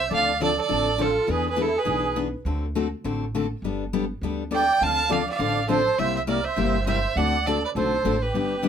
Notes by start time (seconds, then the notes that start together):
Already playing: E5
0.10 D2 D3 F3 C4 D4 A4 D5
0.14 F5
0.40 D3 F3 C4 D4 A4 D5
0.57 A4 D5
0.68 A1 D3 F3 C4 D4 A4
0.98 D3 F3 C4 D4 F4 A4
1.27 E2 E3 B3 D4 G#4
1.31 G#4 B4
1.48 G#4 B4
1.56 E3 B3 D4 E4 G#4
1.62 A4
1.77 G#4 B4
1.85 B1 E3 B3 D4 G#4
2.16 E3 B3 D4 G#4
2.45 D2 D3 A3 C4 F#4 A4
2.75 D3 A3 C4 F#4 A4
3.04 A1 D3 A3 C4 F#4 A4
3.35 D3 A3 C4 F#4 A4
3.62 G1 G3 B3 D4 A4
3.93 G3 B3 D4 A4
4.21 D2 G3 B3 D4 A4
4.51 G3 B3 D4 A4 D5 G5
4.80 D2 D3 F3 C4 D4 A4 F5 A5
5.09 D3 F3 C4 D4 A4 D5 F5
5.28 D5 F5
5.39 A1 D3 F3 C4 D4 A4
5.68 D3 F3 C4 D4 A4 C5
5.98 C2 C3 G3 A#3 E4 G4 C5 E5
6.15 C5 E5
6.27 C3 G3 A#3 E4 G4 A#4 D5
6.44 C5 E5
6.56 G1 C3 G3 A#3 E4 G4
6.85 C3 G3 A#3 E4 G4 C5 E5
7.16 D2 D3 A3 C4 F#4 A4 D5 F#5
7.46 D3 A3 C4 F#4 A4 D5
7.64 B4 D5
7.75 B1 D3 A3 C4 F#4 A4 C5
8.04 A1 D3 A3 C4 F#4 A4
8.22 G4 B4
8.34 G1 D3 G3 B3 D4 G4
8.63 D3 G3 B3 D4 G4